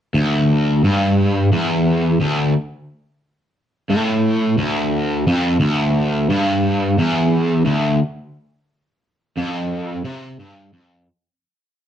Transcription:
overdriven electric guitar
0.14 D2
0.84 G2
1.52 E2
2.20 D2
3.90 A2
4.58 D2
5.27 F2
5.60 D2
6.30 G2
6.98 E2
7.65 D2
9.38 F2
10.05 C3
10.39 G2
10.73 F2

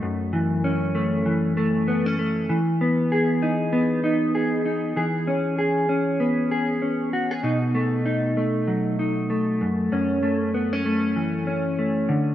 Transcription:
clean electric guitar
Already playing: F#3 A3
0.02 F#2
0.33 E3
0.64 C#4
0.95 A3
1.26 E3
1.57 A3
1.88 B3
2.06 C#4
2.19 A3
2.50 E3
2.81 B3
3.12 G#4
3.42 D#4
3.73 B3
4.04 D#4
4.35 G#4
4.65 D#4
4.96 E3 G#4
5.27 C#4
5.58 G#4
5.89 C#4
6.20 B3
6.51 G#4
6.82 C#4
7.13 F#4
7.31 G#4
7.43 B2 D#4
7.75 A3
8.05 D#4
8.37 A3
8.67 F#3
8.99 D#4
9.30 A3
9.61 F#2
9.92 F#2 C#4
10.23 A3
10.54 B3
10.73 C#4
10.86 A3
11.16 E3
11.47 C#4
11.79 A3
12.09 D3

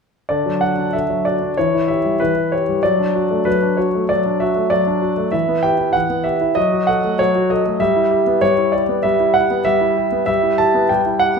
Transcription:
grand piano
0.29 D3 D5
0.46 F#3
0.61 F#4 F#5
0.78 D4
0.93 D3 E5
1.10 F#3
1.25 F#4 D5
1.42 D4
1.57 E3 C#5
1.74 E4
1.88 G4 E5
2.05 G3
2.20 E3 B4
2.37 E4
2.52 G4 C#5
2.69 G3
2.83 F#3 D5
3.00 D4
3.15 F#4
3.30 A3
3.45 F#3 B4
3.62 D4
3.77 F#4 C#5
3.95 A3
4.09 F#3 D5
4.26 D4
4.40 F#4 E5
4.56 A3
4.70 F#3 D5
4.87 D4
5.02 F#4
5.17 A3
5.32 E3 E5
5.48 B3
5.63 G4 G5
5.78 E4
5.93 E3 F#5
6.10 B3
6.24 G4 E5
6.41 E4
6.55 F#3 D#5
6.72 F#4
6.87 A4 F#5
7.04 A3
7.19 F#3 C#5
7.35 F#4
7.50 A4 D#5
7.66 A3
7.80 G3 E5
7.96 E4
8.11 G4
8.27 B3
8.41 G3 C#5
8.58 E4
8.72 G4 D5
8.89 B3
9.03 G3 E5
9.20 E4
9.34 G4 F#5
9.51 B3
9.65 G3 E5
9.80 E4
10.12 B3
10.26 G3 E5
10.43 E4
10.58 G4 A5
10.75 B3
10.89 G3 G5
11.06 E4
11.19 G4 F#5

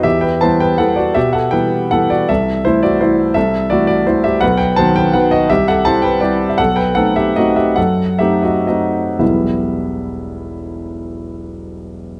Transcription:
grand piano
0.03 E2 G4 E5
0.21 B4 G5
0.41 E3 G3 B3 C5 A5
0.60 B4 G5
0.78 E3 G3 B3 A4 F#5
0.96 F#4 D5
1.14 B2 G4 E5
1.33 A4 F#5
1.51 E3 G3 B3 B4 G5
1.91 E3 G3 B3 A4 F#5
2.10 F#4 D5
2.29 C2 A4 E5
2.65 E3 A3 E4 C5
2.83 F#4 D5
3.01 E3 A3 E4 C5
3.34 C2 A4 E5
3.70 E3 A3 E4 F#4 D5
3.87 F#4 D5
4.07 E3 A3 E4 C5
4.24 G4 E5
4.41 B1 B4 F#5
4.57 B4 G5
4.76 D#3 F#3 B3 C5 A5
4.96 B4 G5
5.13 D#3 F#3 B3 B4 F#5
5.31 F#4 D#5
5.50 C2 G4 E5
5.68 A4 F#5
5.85 G3 C4 E4 C5 A5
6.02 B4 G5
6.20 G3 C4 E4 G4 D5
6.49 E5
6.58 B1 A4 F#5
6.76 B4 G5
6.95 A3 C4 D#4 A4 F#5
7.16 G4 E5
7.36 A3 C4 D#4 F#4 D#5
7.56 G4 E5
7.76 F#2 A4 F#5
8.19 A3 C4 D#4 G4 E5
8.43 F#4 D#5
8.67 A3 C4 D#4 F#4 D#5
9.19 E1 B1 E3 G3 B3 E4 E5

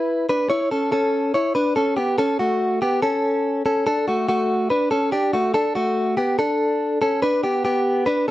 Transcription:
clean electric guitar
Already playing: E4 B4
0.29 D4 B4
0.50 E4 C#5
0.71 C#4 A4
0.92 C#4 A4
1.34 E4 C#5
1.55 D4 B4
1.76 C#4 A4
1.97 B3 G4
2.18 C#4 A4
2.39 A3 F#4
2.82 B3 G4
3.02 C#4 A4
3.66 C#4 A4
3.87 D4 A4
4.08 A3 F#4
4.29 A3 F#4
4.70 D4 B4
4.91 C#4 A4
5.12 D4 G4
5.33 A3 F#4
5.54 D4 A4
5.75 A3 F#4
6.17 B3 G4
6.39 D4 A4
7.02 C#4 A4
7.22 D4 B4
7.44 B3 G4
7.65 B3 G4
8.06 D4 B4

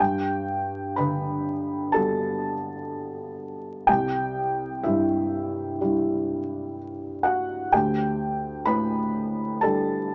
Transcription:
felt piano
Already playing: G5
0.00 G2 G4
0.96 D3 B4 B5
1.92 G3 B3 F#4 A4 A5
3.87 C2 G4 G5
4.83 G2 E4 E5
5.81 G3 D4 E4
7.23 F#4 F#5
7.72 D2 G4 G5
8.65 A2 B4 B5
9.61 G3 D4 G4 A4 A5

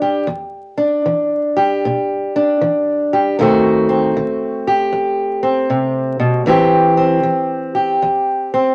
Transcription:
steel-string acoustic guitar
Already playing: E3 D4
0.02 G4
0.27 E2
0.78 D4
1.06 E3
1.57 G4
1.85 B2
2.36 D4
2.61 E3
3.13 G4
3.39 B2 D#3 A3 C4 F#4
3.89 C4
4.17 D#3
4.67 G4
4.92 F#2
5.43 C4
5.70 C3
6.20 B2
6.46 A2 E3 C4 G4
6.97 C4
7.23 E3
7.75 G4
8.02 E2
8.54 C4

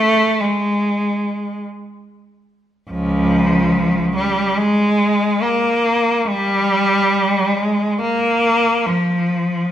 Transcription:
cello
Already playing: A3
0.41 G#3
2.90 C#2 F3
4.16 G3
4.58 G#3
5.43 A#3
6.28 G3
7.56 G#3
8.01 A#3
8.86 F3

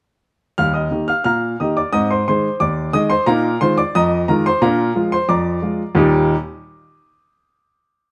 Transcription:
grand piano
0.58 D#2 G3 F5 F6
0.74 D#5 D#6
0.91 D#3 A#3 G4
1.08 F5 F6
1.24 A#2 F5 A#5 F6
1.60 D#3 A#3 G4 D#5 D#6
1.77 D5 D6
1.93 G#2 C4 D#5 D#6
2.11 C5 C6
2.28 D#3 G#3 G#4 C5 C6
2.60 D#2 D5 D6
2.93 D#3 G#3 G#4 D#5 D#6
3.10 C5 C6
3.26 A#2 D#4 A#4 F5 A#5
3.61 D#3 G#3 F4 C5 C6
3.78 D5 D6
3.95 F2 D#5 A#5 D#6
4.28 D#3 G#3 F4 A#4 A#5
4.46 C5 C6
4.62 A#2 D4 A#4 F5 A#5
4.96 F3 G#3 F4
5.12 C5 C6
5.29 F2 D5 A#5 D6
5.62 F3 G#3 F4
5.95 D#2 A#2 G3 A#3 D#4 G4 D#6

